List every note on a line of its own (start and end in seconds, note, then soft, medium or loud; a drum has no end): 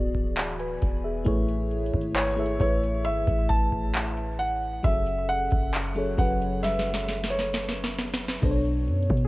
0.00 0.78 D1 loud
0.00 1.28 E3 medium
0.00 1.28 B3 medium
0.00 1.28 F#4 medium
0.00 1.05 G#4 medium
0.00 0.37 D5 loud
0.15 kick medium
0.37 0.58 D5 medium
0.37 0.58 B5 medium
0.37 clap loud
0.37 closed hi-hat medium
0.59 1.02 B4 medium
0.59 1.02 G#5 medium
0.59 closed hi-hat soft
0.82 1.25 E1 loud
0.82 kick medium
0.82 closed hi-hat medium
1.04 1.25 G#4 medium
1.04 1.47 E5 medium
1.24 1.91 A1 loud
1.24 2.00 A3 medium
1.24 2.01 E4 medium
1.24 2.01 G#4 medium
1.24 2.01 B4 medium
1.24 2.02 C#5 loud
1.24 kick loud
1.24 closed hi-hat medium
1.48 closed hi-hat soft
1.71 closed hi-hat soft
1.86 closed hi-hat soft
1.94 2.58 G#1 loud
1.94 kick medium
2.01 closed hi-hat soft
2.16 2.59 C#5 medium
2.16 clap loud
2.16 closed hi-hat medium
2.31 closed hi-hat medium
2.37 2.52 A3 medium
2.37 2.53 E4 medium
2.37 2.53 G#4 medium
2.37 2.54 B4 medium
2.37 2.54 E5 medium
2.46 closed hi-hat medium
2.59 3.08 A1 loud
2.59 3.80 A3 medium
2.59 3.80 E4 medium
2.59 3.80 G#4 medium
2.59 3.81 B4 medium
2.59 3.07 C#5 medium
2.59 3.81 E5 medium
2.59 kick medium
2.59 closed hi-hat medium
2.84 closed hi-hat medium
3.05 3.27 G#1 loud
3.05 3.47 E5 loud
3.05 closed hi-hat medium
3.28 4.81 A1 medium
3.28 kick medium
3.28 closed hi-hat medium
3.49 4.42 A5 loud
3.49 kick medium
3.49 closed hi-hat medium
3.73 kick medium
3.94 clap loud
3.94 closed hi-hat medium
4.17 closed hi-hat soft
4.39 4.86 F#5 loud
4.39 closed hi-hat medium
4.83 5.49 F#1 loud
4.83 5.58 F#3 medium
4.83 5.59 C#4 medium
4.83 5.59 G#4 medium
4.83 5.60 A4 medium
4.83 5.26 E5 loud
4.83 5.60 E5 medium
4.83 kick loud
4.83 closed hi-hat medium
5.06 closed hi-hat soft
5.29 6.15 F#5 loud
5.29 closed hi-hat medium
5.50 6.16 F#1 loud
5.50 kick medium
5.50 closed hi-hat soft
5.74 clap loud
5.74 closed hi-hat medium
5.95 6.11 F#3 medium
5.95 6.11 C#4 medium
5.95 6.12 G#4 medium
5.95 6.12 A4 medium
5.95 6.12 C#5 medium
5.95 closed hi-hat soft
6.17 8.39 F#1 loud
6.17 7.38 F#3 medium
6.17 7.38 C#4 medium
6.17 7.38 G#4 medium
6.17 7.39 A4 medium
6.17 7.39 B4 medium
6.17 6.60 F#5 medium
6.17 kick medium
6.17 closed hi-hat medium
6.42 closed hi-hat medium
6.63 7.32 E5 medium
6.63 snare medium
6.63 closed hi-hat medium
6.79 snare medium
6.87 closed hi-hat medium
6.94 snare medium
7.08 snare medium
7.08 closed hi-hat medium
7.24 snare medium
7.30 7.94 C#5 medium
7.39 snare medium
7.53 snare medium
7.53 closed hi-hat medium
7.69 snare medium
7.76 closed hi-hat soft
7.84 snare medium
7.98 snare medium
7.98 closed hi-hat soft
8.13 snare loud
8.20 closed hi-hat medium
8.28 snare medium
8.42 8.89 B1 loud
8.42 9.17 B2 medium
8.42 9.17 B3 medium
8.42 9.18 D4 medium
8.42 9.18 A4 medium
8.42 8.50 C5 medium
8.42 kick loud
8.42 closed hi-hat medium
8.51 9.22 C#5 medium
8.65 closed hi-hat soft
8.88 9.09 F#2 medium
8.88 closed hi-hat soft
9.03 closed hi-hat soft
9.10 9.28 B2 loud
9.10 kick medium
9.17 closed hi-hat soft